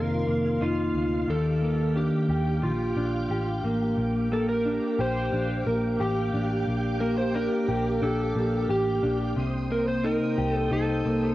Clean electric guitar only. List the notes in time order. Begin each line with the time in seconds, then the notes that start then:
Already playing: F2 C3 D#3 A#3 D#4
0.27 A#3
0.61 D#4
1.28 D#3
1.62 A#3
1.96 D4
2.30 G4
2.97 D4
3.31 G4
3.64 A#3
4.32 A#3
4.65 D4
4.99 G4
5.33 D4
5.67 A#3
6.00 G4
6.34 D4
7.01 A#3
7.35 D4
7.68 G4
8.02 D4
8.36 A#3
8.69 G4
9.03 D4
9.36 C3
9.70 A#3
10.04 D#4
10.38 G4
10.71 D#4
11.05 A#3